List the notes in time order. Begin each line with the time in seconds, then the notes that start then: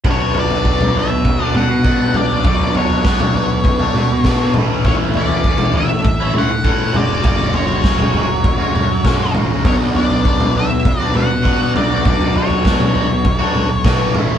0.05 B1 B2 F#3 B3 D4, kick, floor tom
0.11 C#5
0.34 B2 F#3 B3, floor tom
0.39 D4 D5
0.51 floor tom
0.65 B2 F#3 B3 D4, kick
0.81 floor tom, mid tom
0.94 B2 F#3 B3 D4, floor tom
0.99 E5
1.11 muted overdriven electric guitar stroke
1.25 B1, kick, floor tom
1.39 F#3 B3 D4
1.45 D5
1.54 B2 F#3 B3 D4 F#5, mid tom
1.69 muted overdriven electric guitar stroke
1.84 B2 F#3 B3 D4, kick
2.13 B1 B2 F#3 B3 D4 D5, floor tom, mid tom
2.29 F#3 B3 D4
2.43 B1 B2 F#3 B3 D4 D5, kick, floor tom
2.59 floor tom
2.74 B2 F#3 B3 D4 C#5, floor tom
2.90 floor tom
3.04 B2 F#3 B3 D4, kick, snare
3.20 floor tom, mid tom
3.34 B2 F#3 B3 D4, floor tom
3.51 muted overdriven electric guitar stroke
3.64 B1, kick, floor tom
3.79 F#3 B3 D4, floor tom
3.94 B2 F#3 B3 D4, mid tom
4.11 muted overdriven electric guitar stroke
4.24 B2 F#3 B3, kick, snare, mid tom
4.28 D4
4.54 A1 A2 E3 A3 C#4, floor tom, mid tom
4.59 E4
4.71 A3 C#4 E4
4.84 A1 A2 E3 A3 C#4 C#5, kick, floor tom
4.89 E4
5.14 E3 A3 D5, floor tom
5.18 C#4 E4
5.28 floor tom
5.44 A2 E3 A3 C#4, kick
5.49 E4
5.58 floor tom, mid tom
5.74 E3 A3 E5, floor tom
5.78 C#4 E4
5.91 muted overdriven electric guitar stroke
6.04 A1, kick, floor tom
6.20 A3 C#4 E4
6.34 A2 E3 A3 C#4 E4, mid tom
6.38 F#5
6.50 muted overdriven electric guitar stroke
6.64 A2 E3 A3 C#4 E4, kick
6.93 F#1 F#3 G#3 C#4 F#4 D5, floor tom, mid tom
7.08 G#3 C#4 F#4
7.22 F#1 F#3 G#3 C#4 F#4, kick, floor tom
7.27 D5
7.39 floor tom
7.52 F#3 G#3 C#4 F#4 C#5, floor tom
7.69 floor tom
7.82 F#3 G#3 C#4 F#4, kick, snare
7.99 floor tom, mid tom
8.12 F#3 G#3 C#4 F#4, floor tom
8.28 muted overdriven electric guitar stroke
8.44 F#1, kick, floor tom
8.58 G#3 C#4 F#4, floor tom
8.73 F#2 F#3 G#3 C#4 F#4, mid tom
8.89 muted overdriven electric guitar stroke
9.04 F#3 G#3 C#4 F#4, kick, snare, mid tom
9.34 A1 F#3 G#3 C#4 F#4, floor tom, mid tom
9.49 G#3 C#4 F#4
9.64 B1 B2 F#3 B3 D4 F#4 C#5, kick, floor tom
9.95 F#3 B3 D4 F#4 D5, floor tom
10.10 floor tom
10.25 B2 F#3 B3 D4 F#4, kick
10.40 floor tom, mid tom
10.54 F#3 B3 D4 F#4 E5, floor tom
10.69 muted overdriven electric guitar stroke
10.85 B1, kick, floor tom
11.00 B3 D4 F#4 D5
11.14 B2 F#3 B3 D4 F#4 F#5, mid tom
11.31 muted overdriven electric guitar stroke
11.43 B2 F#3 B3 D4 F#4, kick
11.74 B1 F#3 B3 D4 F#4 D5, floor tom, mid tom
11.90 B3 D4 F#4
12.04 B1 B2 F#3 B3 D4 F#4 D5, kick, floor tom
12.21 floor tom
12.34 F#3 B3 D4 F#4 C#5, floor tom
12.50 floor tom
12.64 B2 F#3 B3 D4 F#4, kick, snare
12.80 floor tom, mid tom
12.94 F#3 B3 D4 F#4, floor tom
13.10 muted overdriven electric guitar stroke
13.25 B1, kick, floor tom
13.39 B3 D4 F#4, floor tom
13.54 B1 F#3 B3 D4 F#4, mid tom
13.69 muted overdriven electric guitar stroke
13.84 B2 F#3 B3 D4 F#4, kick, snare, mid tom
14.14 A1 A2 E3 A3 C#4 E4, floor tom, mid tom
14.28 A3 C#4 E4